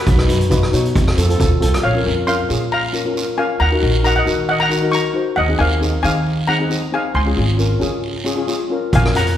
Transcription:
Already playing: F#5 B5
0.07 B1, kick, closed hi-hat, long guiro
0.16 D#4 F#4 B4, cross-stick
0.27 F#2 D#4 F#4 B4, closed hi-hat
0.41 closed hi-hat
0.50 D#4 F#4 B4, kick, closed hi-hat, short guiro
0.63 cross-stick
0.72 B2 D#4 F#4 C#5, closed hi-hat, short guiro
0.85 closed hi-hat
0.95 F1, kick, closed hi-hat, long guiro
1.08 cross-stick
1.17 F2 C4 F4 A4, closed hi-hat, short guiro
1.28 C4 F4 A4, closed hi-hat
1.38 D#2 C4 F4 A4, kick, closed hi-hat, short guiro
1.60 C2 C4 F4 A4, closed hi-hat
1.74 cross-stick, closed hi-hat
1.83 A#1 C#5 F5, long guiro
1.95 C#4 F4 A#4
2.04 F2 C#4 F4 A#4
2.27 C#4 F4 A#4 F5 C6, short guiro
2.49 A#2 C#4 F4 G#4, short guiro
2.72 F5 A#5, long guiro
2.92 C#4 F4 A#4, short guiro
3.05 C#4 F4 A#4
3.14 C#4 F4 A#4, short guiro
3.38 C#4 F4 A#4 F5 G#5
3.60 D#2 F#5 A#5, long guiro
3.71 D#4 F#4 A#4
3.81 A#1 D#4 F#4 A#4
4.03 D#4 F#4 A#4 F#5 A#5, short guiro
4.16 D#5 F#5
4.26 D#3 D#4 F#4 A#4, short guiro
4.49 D#5 F#5, long guiro
4.60 F#5 A#5
4.69 D#4 F#4 A#4, short guiro
4.82 D#4 F#4 A#4
4.92 D#4 F#4 A#4 A#5 C#6, short guiro
5.14 D#4 F#4 C5
5.36 D#2 D#5 F#5, long guiro
5.48 C4 D#4 G#4
5.58 D#2 C4 D#4 A#4 F5 G#5
5.80 C4 D#4 G#4, short guiro
6.03 D#3 C4 D#4 G#4 F5 G#5, short guiro
6.27 long guiro
6.47 C4 D#4 G#4 F#5 A#5
6.60 C4 D#4 G#4
6.69 C4 D#4 G#4, short guiro
6.92 C4 D#4 G#4 F5 G#5
7.14 C#2 G#5 C6, long guiro
7.25 C#4 F4 G#4
7.36 G#1 C#4 F4 G#4
7.57 C#4 F4 A#4, short guiro
7.80 C#3 C#4 F4 G#4, short guiro
8.04 long guiro
8.24 C#4 F4 G#4, short guiro
8.36 C#4 F4 G#4
8.47 C#4 F4 G#4, short guiro
8.70 C#4 F4 A#4
8.93 A#1 F5 G#5, kick, closed hi-hat, long guiro
9.04 C#4 F4 A#4, cross-stick
9.14 F2 C#4 F4 A#4 F#5 A#5, closed hi-hat
9.27 closed hi-hat

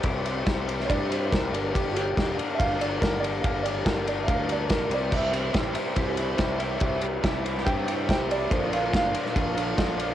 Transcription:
Already playing: G4 C5 E5 C6
0.03 C2 C3 G3 C4 E4 G4, kick, ride
0.24 C3 G3 C4 E4 G4, ride
0.46 C2 C3 G3 C4 E4 G4, kick, snare, ride
0.67 C3 G3 C4 E4 G4, ride
0.80 snare
0.85 C3 G3 C#5
0.89 G2 C4 E4 G4 D5, kick, ride
1.10 C3 G3 C4 E4 G4 C5, ride
1.31 C2 C3 G3 C4 E4 G4 A#4, kick, snare, ride
1.51 G1 G2 D3 G3 A#3 D4 G4 A#4 D5 A#5, ride
1.73 G2 D3 G3 A#3 D4 G4, kick, ride
1.92 G2 D3 G3 A#3 D4 F#4 G4, ride
1.97 G4
2.15 E1 G2 D3 G3 A#3 D4 G4, kick, ride
2.19 snare
2.37 G2 D3 G3 A#3 D4 G4, ride
2.55 G2 D3 G3 E5 F5
2.59 G1 A#3 D4 G4, kick, ride
2.79 G2 D3 G3 A#3 D4 G4 D5, ride
3.00 G1 G2 D3 G3 A#3 D4 G4 A#4, kick, snare, ride
3.20 G2 D3 G3 A#3 D4 G4 D5
3.24 ride
3.42 G1 G2 D3 G3 A#3 D4 G4 F5, kick, ride
3.63 G2 D3 G3 A#3 D4 G4 D5, ride
3.85 G1 G2 D3 G3 A#3 D4 G4 A#4, kick, snare, ride
4.06 G2 D3 G3 A#3 D4 G4 D5, ride
4.24 G2 E5
4.28 D2 D3 G3 A#3 D4 G4 F5, kick, ride
4.47 G2 D3 G3 A#3 D4 G4, ride
4.52 D5
4.67 A#1 G2 D3 G3 A#3 D4 G4 A#4, kick, snare, ride
4.89 C2 C3 G3 C4 E4 G4 C5 E5 C6, ride
4.94 D5
5.09 C3 E3 G3 C4 E4 G4, kick, crash
5.15 E5
5.32 C3 E3 G3 C4 E4 G4, ride
5.52 A1 C3 E3 G3 C4 E4 G4, kick, snare, ride
5.74 C3 E3 G3 C4 E4 G4, ride
5.95 C2 C3 E3 G3 C4 E4 G4, kick, ride
6.17 C3 E3 G3 C4 E4 G4, ride
6.37 C2 C3 E3 G3 C4 E4 G4, kick, snare, ride
6.59 C3 E3 G3 C4 E4 G4 A#5, ride
6.80 C2 C3 E3 G3 C4 E4 G4, kick, ride
7.01 C3 E3 G3 C4 E4 G4, ride
7.21 C2 C3 E3 G3 C4 E4 G4, kick, snare, ride
7.42 C3 E3 G3 C4 E4 G4, ride
7.58 snare
7.65 G2 C3 E3 G3 C4 E4 G4 G5, kick, ride
7.86 C3 E3 G3 C4 E4 G4 G5, ride
8.07 C2 C3 E3 G3 C4 E4 G4 G5, kick, snare, ride
8.28 C3 E3 G3 C4 E4 G4 D5, ride
8.50 A#1 A#2 D3 F3 A#3 D4 F4 A#4 C5 D5, kick, ride
8.71 A#2 D3 F3 A#3 D4 F4 F5, ride
8.92 G1 A#2 D3 F3 A#3 D4 F4, kick, snare, ride
8.96 F5
9.13 A#2 D3 F3 A#3 D4 F4, ride
9.26 snare
9.34 A#1 A#2 D3 F3 A#3 D4 F4, kick, ride
9.56 A#2 D3 F3 A#3 D4 F4, ride
9.77 A#1 A#2 D3 F3 A#3 D4 F4, kick, snare, ride
9.98 A#2 D3 F3 A#3 D4 F4, ride

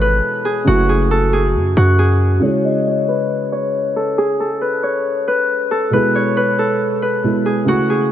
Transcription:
Already playing: G#1 B2 E3 G#3 E4 G#4 A4 C#5
0.01 B4
0.45 G#4
0.64 F#1 C#3 F#3 A3 F#4
0.69 E4 F#4
0.89 G#4
1.11 A4
1.33 G#4
1.55 F#2
1.77 F#2 F#4
1.99 G#4
2.40 C#3 G#3 E4 C#5
2.46 G#4
2.65 D#5
2.87 C#5
3.08 B4
3.52 C#5
3.96 A4
4.18 G#4
4.40 A4
4.61 B4
4.83 C#5
5.28 B4
5.71 A4
5.90 B2 G#3 E4 B4
5.96 G#4
6.15 C#5
6.37 B4
6.59 A4
7.02 B4
7.23 B2 G#3 E4 G#4
7.46 G#4
7.65 C#3 A3 E4 F#4
7.71 F#4
7.90 G#4

